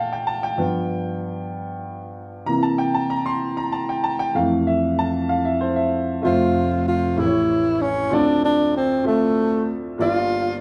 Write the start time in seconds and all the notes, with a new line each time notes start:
Already playing: A#2 D3 A3 F5 F#5 G5 A5
0.13 G5
0.27 A5
0.43 G5
0.58 G2 F3 B3
2.46 C3 E3 A#3 A#5
2.63 A5
2.78 G5
2.94 A5
3.10 A#5
3.26 C6
3.57 A#5
3.72 A5
3.89 G5
4.04 A5
4.19 G5
4.35 F2 E3 A3 F5
4.67 E5
4.99 A5
5.29 F5
5.45 E5
5.61 C5
5.76 E5
6.22 F1 F2 A3 F4 C5 E5
6.88 F4
7.16 A1 A2 A3 E4 G4 A#4
7.25 C#5
7.82 C#4
8.10 D2 D3 C4 F4 A4 D5
8.14 D4
8.45 D4
8.77 C4
9.03 C4 F4 A4 E5
9.07 A3
9.98 G1 G2 A#3 F4 G4 D5